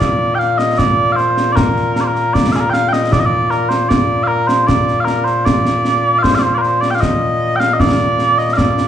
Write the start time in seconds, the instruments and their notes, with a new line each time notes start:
Already playing: bagpipes A#2
0.00 bagpipes D5, concert bass drum, snare
0.35 bagpipes F5 G5
0.40 snare
0.58 bagpipes D#5, snare
0.78 bagpipes D5, concert bass drum, snare
1.12 bagpipes C5 F5
1.18 snare
1.37 snare
1.52 bagpipes A#4 D5
1.57 concert bass drum, snare
1.76 snare
1.96 snare
2.01 bagpipes C5 D5
2.08 bagpipes A#4
2.16 snare
2.34 bagpipes D5, concert bass drum, snare
2.52 bagpipes G#4 F5, snare
2.60 bagpipes A#4
2.70 bagpipes F5 G5, snare
2.88 bagpipes G5
2.93 bagpipes D#5, snare
3.12 bagpipes D5, concert bass drum, snare
3.19 bagpipes D#5
3.25 bagpipes D5
3.51 bagpipes A#4, snare
3.69 bagpipes C5, snare
3.89 bagpipes D5, concert bass drum, snare
4.23 bagpipes A#4 F5
4.47 bagpipes C5, snare
4.67 bagpipes D5, concert bass drum, snare
4.88 snare
5.00 bagpipes F5
5.05 bagpipes A#4, snare
5.24 bagpipes C5, snare
5.45 bagpipes D5, concert bass drum, snare
5.66 snare
5.85 snare
6.19 bagpipes F5
6.23 bagpipes C5, concert bass drum, snare
6.35 bagpipes F5
6.39 bagpipes C5 D5
6.55 bagpipes A#4 D5
6.62 bagpipes C5, snare
6.81 bagpipes D5, snare
6.91 bagpipes G5
6.95 bagpipes F5
7.01 bagpipes D#5, concert bass drum, snare
7.56 bagpipes F5 G5
7.60 snare
7.74 bagpipes D#5
7.80 bagpipes D5, concert bass drum, snare
8.00 snare
8.19 snare
8.38 bagpipes D#5, snare
8.54 bagpipes D5 F5
8.58 concert bass drum, snare
8.78 snare